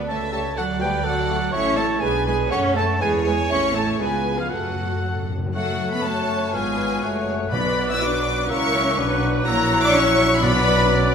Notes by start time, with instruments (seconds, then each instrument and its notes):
Already playing: flute D5
0.07 double bass section C#2, cello section A3, viola section A4, flute C#5, violin section E5 A5, cor anglais A5
0.32 french horn section A3 G4, cello section A3, viola section A4, flute C#5, cor anglais A5, violin section A5
0.56 double bass section D2, cello section F#3, viola section F#4, flute A4, violin section D5 F#5, cor anglais F#5
0.80 cello section G3, french horn section A3 F#4, viola section G4, flute B4, cor anglais G5, violin section G5
1.04 cello section F#3, viola section F#4, flute A4, violin section F#5, cor anglais F#5
1.30 french horn section A3 F#4
1.52 double bass section A1, french horn section A3 E4, cello section C#4, viola section C#5, cor anglais C#5, violin section C#5 C#6, flute E5
1.76 cello section A3, viola section A4, flute C#5, cor anglais A5, violin section A5
2.00 double bass section B1, french horn section F#3 D4, cello section G#3, viola section G#4, violin section B4 G#5, flute B4, cor anglais G#5
2.26 cello section G#3, viola section G#4, flute B4, cor anglais G#5, violin section G#5
2.50 double bass section F#2, french horn section A3 C#4, cello section C#4, violin section A4 C#6, viola section C#5, cor anglais C#5, flute F#5
2.75 cello section A3, viola section A4, flute C#5, cor anglais A5, violin section A5
3.00 double bass section E2, cello section G#3, french horn section B3 E4, viola section G#4, flute B4, violin section C#5 G#5, cor anglais G#5
3.24 cello section G#3, viola section G#4, flute B4, violin section G#5
3.28 cor anglais G#5
3.49 double bass section A1, french horn section A3 E4, cello section C#4, viola section C#5, cor anglais C#5, flute E5, violin section C#6
3.74 cello section A3, viola section A4, flute C#5, violin section A5
3.78 cor anglais A5
3.99 double bass section C#2, cello section G#3, french horn section B3 F4, viola section G#4, flute B4, violin section B4 G#5, cor anglais G#5
4.37 cello section F3, viola section F4, flute G#4, violin section F5, cor anglais F5
4.50 double bass section F#2, timpani F#2, cello section F#3, french horn section A3 F#4, viola section F#4, violin section A4 F#5, flute A4, cor anglais F#5
4.59 timpani F#2
4.67 timpani F#2
4.75 timpani F#2
4.84 timpani F#2
4.91 timpani F#2
4.99 timpani F#2
5.07 timpani F#2
5.15 timpani F#2
5.23 timpani F#2
5.30 timpani F#2
5.38 timpani F#2
5.46 timpani F#2
5.54 double bass section F#2, cello section F#3, french horn section A3 F#4, bassoon A3, violin section F#4 F#5, viola section A4, cor anglais C#5, flute F#6
5.93 cello section B3, violin section B4 B5
6.04 french horn section A3 F#4, cello section A3, violin section A4 A5, viola section C#5
6.52 double bass section G#1, cello section G#3, french horn section B3 F4, bassoon B3, violin section G#4 G#5, viola section B4, flute F6
7.02 double bass section F#1, french horn section A3 F#4, bassoon A3, viola section C#5, flute F#6
7.52 double bass section B1, timpani B2, french horn section F#3 F#4, cello section B3, bassoon B3, violin section B4 B5, viola section D5, cor anglais D5
7.89 cello section E4, violin section E5 E6
8.00 french horn section F#3 F#4, cello section D4, viola section B4, violin section D5 D6
8.48 double bass section C#2, french horn section F#3 E4, bassoon A#3, cello section C#4, viola section A#4, violin section C#5 C#6, cor anglais E5
8.96 double bass section B1, french horn section F#3 D4, bassoon F#3, viola section B4, cor anglais D5, flute F#6
9.43 double bass section A#1, french horn section F#3 E4, cello section A#3, violin section A#4 A#5, viola section C#5, cor anglais E5
9.82 cello section D4, violin section D5 D6
9.93 french horn section F#3 E4, cello section C#4, violin section C#5 C#6
10.40 double bass section B1, timpani B2, french horn section F#3 D4, bassoon F#3, cello section B3, violin section B4 B5, viola section D5, cor anglais D5, flute F#6
10.90 french horn section C#4, viola section D5